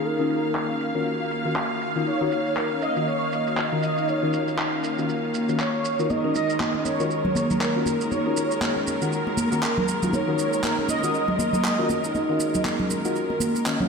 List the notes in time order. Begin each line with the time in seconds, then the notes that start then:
Already playing: D#3 A#3 C#4 F4 F#4 A#4 F5
0.05 D#4 A#4, shaker
0.19 D#3 C#4 D#4 F4 F#4 A#4
0.30 shaker
0.44 shaker
0.55 clap, shaker
0.70 C#4
0.80 A#4, shaker
0.95 D#3 C#4 F4 F#4 A#4, shaker
1.06 A#4, shaker
1.31 A#3, shaker
1.45 D#3 C#4 F4 F#4 A#4, shaker
1.56 clap, shaker
1.81 shaker
1.96 D#3 C#4 D#4 F4 F#4 A#4, shaker
2.06 D#4 C#5, shaker
2.21 D#3 C#4 D#4 F4 F#4 A#4
2.32 shaker
2.46 shaker
2.57 A#4, clap, shaker
2.71 C#4
2.82 A#4 D#5, shaker
2.96 D#3 C#4 F4 F#4 A#4, shaker
3.07 A#4 C#5, shaker
3.32 A#3 D#5, shaker
3.47 F#4, shaker
3.57 clap, shaker
3.72 D#3 C#4 F4 F#4 A#4
3.83 D#5, shaker
3.97 D#4, shaker
4.08 D#4 C#5, shaker
4.23 D#3 C#4 D#4 F4 F#4 A#4
4.33 shaker
4.48 shaker
4.59 clap, shaker
4.73 C#4
4.84 A#4, shaker
4.98 D#3 C#4 F4 F#4 A#4, shaker
5.09 A#4, shaker
5.34 A#3, shaker
5.49 D#3 C#4 F4 F#4 A#4, shaker
5.59 C#5, clap, shaker
5.85 shaker
5.99 D#3 C#4 D#4 F4 F#4 A#4, shaker
6.10 G#3 D#4 A#4 D#5, muted conga, high conga, shaker
6.24 D#3 C#4 D#4 F4 F#4 A#4
6.35 D#5, muted conga, shaker
6.50 shaker
6.60 clap, high conga, shaker
6.75 C#4, muted conga
6.85 A#4 C#5, high conga, shaker
7.00 D#3 C#4 F4 F#4 A#4, muted conga, shaker
7.11 A#4, shaker
7.25 muted conga, low conga
7.35 A#3 C#5, high conga, shaker
7.50 A#3, muted conga, low conga, shaker
7.60 A#4, clap, shaker
7.76 D#3 C#4 F4 F#4 A#4
7.86 muted conga, high conga, shaker
8.01 D#4, shaker
8.11 D#4 C#5, muted conga, high conga, shaker
8.26 D#3 C#4 D#4 F4 F#4 A#4
8.37 muted conga, shaker
8.51 shaker
8.61 clap, high conga, shaker
8.77 C#4, muted conga
8.87 A#4, high conga, shaker
9.02 D#3 C#4 F4 F#4 A#4, muted conga, shaker
9.13 A#4, shaker
9.27 muted conga
9.37 A#3, high conga, shaker
9.52 D#3 A#3 C#4 F4 F#4 A#4, muted conga, shaker
9.63 A#4, clap, shaker
9.78 low conga
9.88 muted conga, shaker
10.02 D#3 C#4 D#4 F4 F#4 A#4, low conga, shaker
10.13 D#4 C#5, muted conga, high conga, shaker
10.28 D#3 C#4 D#4 F4 F#4 A#4
10.38 C#5, muted conga, shaker
10.53 shaker
10.63 A#4, clap, high conga, shaker
10.78 C#4, muted conga
10.89 A#4 D#5, high conga, shaker
11.03 D#3 C#4 F4 F#4 A#4, muted conga, shaker
11.14 A#4, shaker
11.28 muted conga, low conga
11.39 A#3, high conga, shaker
11.53 A#3, muted conga, low conga, shaker
11.65 clap, shaker
11.79 D#3 C#4 F4 F#4 A#4
11.90 muted conga, high conga, shaker
12.04 D#4, shaker
12.15 D#4, muted conga, high conga, shaker
12.29 D#3 C#4 D#4 F4 F#4 A#4
12.40 muted conga, shaker
12.54 high conga, low conga, shaker
12.65 clap, high conga, shaker
12.80 C#4, muted conga, low conga
12.90 A#4, high conga, shaker
13.05 D#3 C#4 F4 F#4 A#4, muted conga, shaker
13.16 A#4, shaker
13.30 muted conga
13.40 A#3, high conga, shaker
13.55 A#3, muted conga, shaker
13.66 D#3 C#4 F4 F#4 D#5, clap, shaker
13.80 D#3 C#4 F4 F#4 C#5, low conga